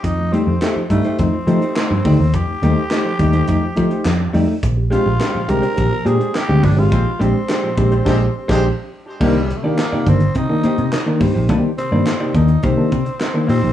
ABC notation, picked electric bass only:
X:1
M:4/4
L:1/16
Q:1/4=105
K:Cdor
V:1 name="Picked electric bass" clef=bass
F,,3 F,, z2 G,, z F,, z F, z2 G,, D,, E,, | F,, z E,, z3 E,,2 F,, z F, z F,,2 F,, z | B,,,3 B,,, z2 C,, z B,,, z B,, z2 D,, G,,, _A,,, | B,,, z B,,, z3 B,,,2 B,,,2 z B,,,2 z3 |
C,,3 z3 G,,,2 C, z2 C, z2 G,, B,,, | C,, z2 G,, z2 E,,2 C,, z C, z3 B,, B,,, |]